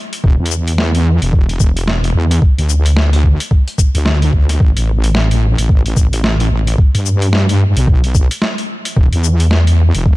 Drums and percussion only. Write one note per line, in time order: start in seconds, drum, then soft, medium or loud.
0.13 closed hi-hat medium
0.24 kick loud
0.46 closed hi-hat medium
0.51 shaker medium
0.68 closed hi-hat medium
0.78 snare loud
0.95 closed hi-hat medium
1.22 closed hi-hat medium
1.33 kick loud
1.49 closed hi-hat soft
1.60 kick loud
1.60 shaker medium
1.77 closed hi-hat medium
1.88 snare loud
2.04 closed hi-hat soft
2.31 closed hi-hat medium
2.42 kick loud
2.58 closed hi-hat medium
2.69 shaker medium
2.86 closed hi-hat medium
2.96 snare loud
3.13 snare soft
3.13 closed hi-hat medium
3.24 kick medium
3.40 closed hi-hat medium
3.51 kick loud
3.68 closed hi-hat soft
3.78 kick loud
3.78 shaker medium
3.95 closed hi-hat medium
4.06 snare loud
4.22 closed hi-hat soft
4.33 kick medium
4.49 snare soft
4.49 closed hi-hat medium
4.60 kick loud
4.77 closed hi-hat medium
5.04 closed hi-hat medium
5.15 snare loud
5.31 closed hi-hat medium
5.58 closed hi-hat medium
5.69 kick loud
5.86 closed hi-hat soft
5.97 kick loud
5.97 shaker medium
6.13 closed hi-hat medium
6.24 snare loud
6.40 closed hi-hat soft
6.67 closed hi-hat medium
6.78 kick loud
6.95 closed hi-hat medium
7.06 shaker medium
7.22 closed hi-hat medium
7.33 snare loud
7.49 closed hi-hat medium
7.77 closed hi-hat medium
7.87 kick loud
8.04 closed hi-hat soft
8.15 kick loud
8.15 shaker medium
8.31 closed hi-hat medium
8.42 snare loud
8.58 closed hi-hat soft
8.85 closed hi-hat medium
8.97 kick loud
9.13 closed hi-hat medium
9.24 shaker medium
9.40 closed hi-hat medium
9.51 snare loud
9.67 closed hi-hat medium
9.95 closed hi-hat medium
10.06 kick loud